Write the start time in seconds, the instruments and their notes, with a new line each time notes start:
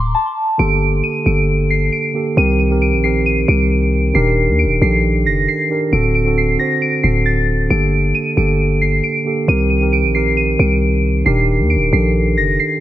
Already playing: 808-style bass D1, synth bell C6
0.15 synth bell A5
0.58 808-style bass G1, tine electric piano D3 A#3 G4 A4, synth bell D7
1.04 synth bell D#7
1.25 808-style bass G1, tine electric piano D3 A#3 G4 A4, synth bell D7
1.70 synth bell C7
1.92 synth bell D7
2.13 tine electric piano D3 A#3 G4 A4
2.36 808-style bass C2, tine electric piano D#3 C4 G4 A#4, synth bell D#7
2.59 synth bell D#7
2.69 tine electric piano D#3 C4 G4 A#4
2.82 synth bell D7
2.93 808-style bass A#1
3.03 tine electric piano D#3 C4 G4 A#4, synth bell C7
3.26 synth bell D#7
3.47 808-style bass C2, tine electric piano D#3 C4 G4 A#4, synth bell D7
4.14 808-style bass D#1, tine electric piano D#3 D4 G4 A#4, synth bell C7
4.48 808-style bass D#2
4.59 synth bell D7
4.65 808-style bass D#1
4.80 808-style bass A#1, tine electric piano D#3 D4 G4 A4, synth bell C7
5.26 808-style bass F#1, synth bell A#6
5.48 synth bell C7
5.69 tine electric piano D#3 D4 G4 A#4
5.91 808-style bass D1, tine electric piano D3 C4 F#4 A4, synth bell D7
6.15 synth bell D7
6.25 tine electric piano D3 C4 F#4 A4
6.38 synth bell C7
6.58 tine electric piano D3 C4 F#4 C5, synth bell A#6
6.82 synth bell D7
7.02 808-style bass D1, tine electric piano D3 C4 F#4 A4, synth bell C7
7.26 synth bell A6
7.69 808-style bass G1, tine electric piano D3 A#3 G4 A4, synth bell D7
8.15 synth bell D#7
8.36 808-style bass G1, tine electric piano D3 A#3 G4 A4, synth bell D7
8.81 synth bell C7
9.04 synth bell D7
9.25 tine electric piano D3 A#3 G4 A4
9.47 808-style bass C2, tine electric piano D#3 C4 G4 A#4, synth bell D#7
9.70 synth bell D#7
9.80 tine electric piano D#3 C4 G4 A#4
9.93 synth bell D7
10.04 808-style bass A#1
10.14 tine electric piano D#3 C4 G4 A#4, synth bell C7
10.37 synth bell D#7
10.58 808-style bass C2, tine electric piano D#3 C4 G4 A#4, synth bell D7
11.25 808-style bass D#1, tine electric piano D#3 D4 G4 A#4, synth bell C7
11.59 808-style bass D#2
11.70 synth bell D7
11.76 808-style bass D#1
11.91 808-style bass A#1, tine electric piano D#3 D4 G4 A4, synth bell C7
12.37 808-style bass F#1, synth bell A#6
12.60 synth bell C7